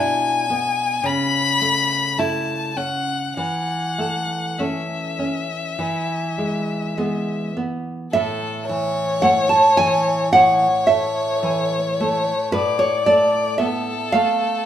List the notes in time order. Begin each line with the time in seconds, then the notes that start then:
Already playing: B2 D4 E4 G#5
0.50 B3
1.03 C#3 B5
1.61 A3
2.18 A3 E4 A5
2.77 C#4 F#5
3.37 E3 F#5
3.98 A3
4.59 A3 C#4 E5
5.19 C#4
5.79 E3
6.38 G#3
6.97 G#3 B3
7.57 B3
8.13 A2 A4 E5
8.69 E3 C#5
9.22 A3 F#5
9.49 A5
9.77 E3 G#5
10.33 A2 C#5 F#5
10.87 A3 E5
11.43 E3
12.00 A3
12.52 A2 B4 D5
12.79 C#5
13.06 A3 D5
13.58 B3 A4 E5
14.12 A3 F5